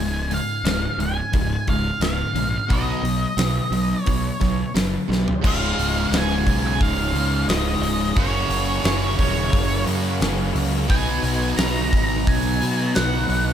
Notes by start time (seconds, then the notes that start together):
Already playing: C#1 C#2 G#2 G#5
0.30 C#2 G#2, open hi-hat
0.34 F5
0.64 C#1 C#2 G#2, snare, open hi-hat
0.98 C#1 C#2 G#2 G#5, open hi-hat
1.32 C#1 C#2 G#2, kick, open hi-hat
1.67 C#1 C#2 G#2 F5, kick, open hi-hat
2.00 C#1 C#2 G#2 F5, snare, open hi-hat
2.34 A#1 C#2 G#2, open hi-hat
2.69 B1 B2 F#3 B3 D#5, kick, open hi-hat
3.02 B1 B2 F#3, open hi-hat
3.37 B1 B2 F#3, snare, open hi-hat
3.71 B1 B2 F#3, open hi-hat
4.03 B1 B2 F#3 C#5, open hi-hat
4.07 kick
4.40 B1 B2 F#3, kick, snare, open hi-hat
4.75 F#1 B2 F#3, snare, open hi-hat
5.09 B1 B2 F#3, snare
5.14 B3 C4
5.20 D4 E4
5.24 F4 G4, floor tom
5.29 A4 B4
5.37 C5 D5
5.41 C#1 C#2 G#2 C#3 C#4 F4 G#4 C#5 E5, kick, crash
5.46 G#3 F4 F5
5.77 C#1, open hi-hat
6.10 C#1, snare, open hi-hat
6.17 G#5
6.47 B1, kick, open hi-hat
6.67 G#5
6.81 C#1 F5, kick, open hi-hat
7.12 C#2 C#3 G#3 F4, open hi-hat
7.18 C#2 G#2
7.46 C#1 C#2 G#2 C#3 D#5, snare, open hi-hat
7.51 G#3 F4
7.80 C#1, open hi-hat
8.16 F#1 F#2 C#3 F#3 A#3 C#4 F#4 A#4 C#5, kick, open hi-hat
8.49 F#1, open hi-hat
8.84 F#1, snare, open hi-hat
9.18 D#1 C#5, kick, open hi-hat
9.53 F#1, kick, open hi-hat
9.86 F#2 C#3 F#3 A#3 C#4 F#4, open hi-hat
10.20 F#1 F#2 C#3 F#3 A#3 C#4 F#4, snare, open hi-hat
10.54 C#2, open hi-hat
10.87 B1 B2 F#3 B3 D#4 F#4 B4 G#5, kick, open hi-hat
10.91 D#4 D#5
11.23 B1, open hi-hat
11.57 B1 A#5, snare, open hi-hat
11.92 G#1, kick, open hi-hat
12.08 A#5
12.27 B1 G#5, kick, open hi-hat
12.61 B2 F#3 B3 D#4 F#4 B4, open hi-hat
12.95 B1 B2 F#3 B3 D#4 F#4 B4 F#5, snare, open hi-hat
13.29 B1, open hi-hat